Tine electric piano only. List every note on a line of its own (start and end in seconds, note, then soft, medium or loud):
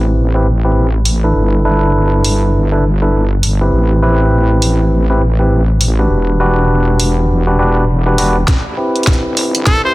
0.00 0.30 C4 medium
0.00 0.30 E4 medium
0.00 0.30 G4 medium
0.00 0.30 B4 loud
0.35 0.46 C4 medium
0.35 0.46 E4 medium
0.35 0.46 G4 medium
0.35 0.46 B4 medium
0.64 0.86 C4 medium
0.64 0.86 E4 medium
0.64 0.86 G4 medium
0.64 0.86 B4 medium
1.24 1.62 D4 medium
1.24 1.62 E4 medium
1.24 1.62 A4 medium
1.24 1.62 B4 medium
1.65 2.68 D4 medium
1.65 2.68 E4 medium
1.65 2.68 A4 medium
1.65 2.68 B4 loud
2.72 2.83 D4 medium
2.72 2.83 E4 medium
2.72 2.83 A4 medium
2.72 2.83 B4 medium
3.02 3.24 D4 medium
3.02 3.24 E4 medium
3.02 3.24 A4 medium
3.02 3.24 B4 medium
3.61 4.00 C4 medium
3.61 4.00 E4 medium
3.61 4.00 G4 medium
3.61 4.00 B4 medium
4.02 5.05 C4 medium
4.02 5.05 E4 medium
4.02 5.05 G4 medium
4.02 5.05 B4 medium
5.10 5.21 C4 medium
5.10 5.21 E4 medium
5.10 5.21 G4 medium
5.10 5.21 B4 medium
5.39 5.61 C4 medium
5.39 5.61 E4 medium
5.39 5.61 G4 medium
5.39 5.61 B4 medium
5.99 6.38 D4 medium
5.99 6.38 F#4 medium
5.99 6.38 G4 medium
5.99 6.37 B4 medium
6.40 7.43 D4 medium
6.40 7.43 F#4 medium
6.40 7.43 G4 medium
6.40 7.43 B4 loud
7.47 7.57 D4 medium
7.47 7.57 F#4 medium
7.47 7.57 G4 medium
7.47 7.57 B4 medium
7.59 7.84 D4 medium
7.59 7.83 F#4 medium
7.59 7.83 G4 medium
7.59 7.83 B4 medium
8.06 8.17 D4 medium
8.06 8.16 F#4 medium
8.06 8.16 G4 medium
8.06 8.16 B4 medium
8.18 8.36 D4 medium
8.18 8.36 F#4 medium
8.18 8.36 G4 medium
8.18 8.36 B4 loud
8.77 9.80 C4 medium
8.77 9.80 E4 medium
8.77 9.80 G4 medium
8.77 9.80 B4 loud
9.84 9.95 C4 medium
9.84 9.95 E4 medium
9.84 9.95 G4 medium
9.84 9.95 B4 medium